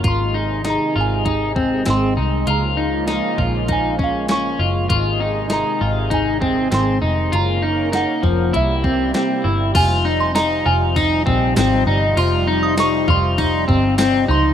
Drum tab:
CC |--------|--------|--------|--------|
RD |--------|--------|--------|--------|
HH |x-x-x-x-|x-x-x-x-|x-x-x-x-|x-x-x-x-|
TB |--------|--------|--------|--------|
SD |--o---o-|--o---o-|--o---o-|--o---o-|
BD |o---oo--|---ooo--|o---oo--|---ooo--|

CC |x-------|--------|
RD |x-x-x-x-|x-x-x-x-|
HH |--------|--------|
TB |--x---x-|--x---x-|
SD |--o---o-|--o---o-|
BD |o---oo--|---ooo--|